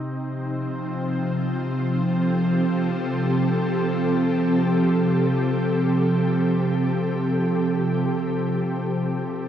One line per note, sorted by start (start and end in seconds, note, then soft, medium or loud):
0.00 8.87 C3 medium
0.00 9.48 C3 medium
0.00 9.48 C4 medium
0.00 0.95 D#4 medium
0.19 8.86 F3 medium
1.85 9.48 G4 medium
1.94 9.48 A4 medium
8.88 9.48 C3 medium